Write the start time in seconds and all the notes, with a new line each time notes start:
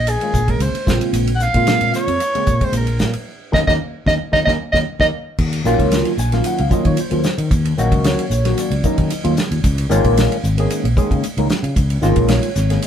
Already playing: A#1 D#5
0.07 G#4, hi-hat pedal, ride
0.21 D#3 G#3 A#3 C#4 F4, ride
0.34 A#1, kick, hi-hat pedal
0.47 D#3 G#3 A#3 C#4 G#4 A#4, kick, ride
0.59 C#2 C5, hi-hat pedal, ride
0.74 muted fretless electric bass stroke, ride
0.86 A#1 C#3 G#3 A#3 C4 F4, kick, snare, hi-hat pedal
1.01 ride
1.13 A#1, hi-hat pedal, ride
1.27 ride
1.35 F#5
1.40 C4 F4 F5, snare, hi-hat pedal
1.54 A#2 C#3 G#3 A#3 C4 F4, kick, ride
1.67 snare, hi-hat pedal, ride
1.81 A#2, ride
1.94 C#5, snare, hi-hat pedal
2.08 F2, ride
2.20 hi-hat pedal, ride
2.35 C#3 G#3 A#3 C4 G#4, muted fretless electric bass stroke, ride
2.47 A#2, kick, hi-hat pedal
2.59 C#3 G#3 A#3 C4 G#4, kick, ride
2.64 C5
2.73 A#1, hi-hat pedal, ride
2.77 A#4
2.87 ride
2.99 A#2 C4 F4, snare, hi-hat pedal
3.13 muted fretless electric bass stroke, ride
3.52 D#2 A#3 C#4 D#4 D#5, kick, snare
3.67 D#2 A#3 C#4 D#4 D#5, kick, snare
4.06 D#2 A#3 C#4 D#4 D#5, kick, snare
4.32 D#2 A#3 C#4 D#4 D#5, kick, snare
4.45 D#2 A#3 C#4 D#4 D#5, kick, snare
4.72 D#2 A#3 C#4 D#4 D#5, kick, snare
4.99 D#2 A#3 C#4 D#4 D#5, kick, snare
5.38 D#2, kick, crash
5.53 ride
5.65 A#1 D#3 F#3 A#3 C#4 F4, snare, hi-hat pedal
5.79 C#2, kick, ride
5.92 snare, hi-hat pedal, ride
6.05 ride
6.18 A#1 G#5, hi-hat pedal
6.32 D#3 F#3 A#3 C#4 F4 F5, snare, ride
6.44 F#5, hi-hat pedal, ride
6.58 C#2 F5, ride
6.70 D#3 F#3 A#3 C#4 F4 D#5, kick, hi-hat pedal
6.85 D#3 C#5, kick, ride
6.97 C5, hi-hat pedal, ride
7.11 D#2 D#3 F#3 A#3 C#4 F4, ride
7.24 C#4 F4, snare, hi-hat pedal
7.38 D#3 C#4 D#4, ride
7.51 D#2, kick, hi-hat pedal, ride
7.65 ride
7.77 A#1 D#3 F#3 A#3 C#4 F#4 D#5, hi-hat pedal
7.92 C#2, kick, ride
8.04 C#5, snare, hi-hat pedal, ride
8.19 ride
8.30 A#1, hi-hat pedal
8.44 D#3 F#3 A#3 C#4 F#4, snare, ride
8.58 D5, hi-hat pedal, ride
8.71 C#2, ride
8.84 D#3 F#3 A#3 C#4 D#4 D#5, kick, hi-hat pedal
8.98 D#3, kick, ride
9.10 hi-hat pedal, ride
9.23 D#2 D#3 F#3 A#3 C#4 F4, ride
9.37 C#4, snare, hi-hat pedal
9.50 D#2 C#4 F4, ride
9.64 C#2, kick, hi-hat pedal, ride
9.78 ride
9.90 G#1 D#3 G#3 A#3 C#4 F4, hi-hat pedal
10.04 A#1, kick, ride
10.17 snare, hi-hat pedal, ride
10.32 ride
10.44 G#1, hi-hat pedal
10.58 D#3 G#3 A#3 C#4 G#4, ride
10.70 hi-hat pedal, ride
10.84 A#1, ride
10.97 D#3 G#3 A#3 C#4 G#4, kick, hi-hat pedal
11.11 C#3, kick, ride
11.24 hi-hat pedal, ride
11.37 C#2 D#3 G#3 A#3 C#4 D#4, ride
11.49 C#4 F4, snare, hi-hat pedal
11.63 C#3 C#4 F4, ride
11.76 C#2, kick, hi-hat pedal, ride
11.90 ride
12.02 G#1 D#3 G#3 A#3 C#4 F4 D#5, snare, hi-hat pedal
12.16 A#1, kick, ride
12.28 C#5, snare, hi-hat pedal, ride
12.43 ride
12.56 G#1, snare, hi-hat pedal
12.70 D#3 G#3 A#3 C#4 G#4, snare, ride
12.82 hi-hat pedal, ride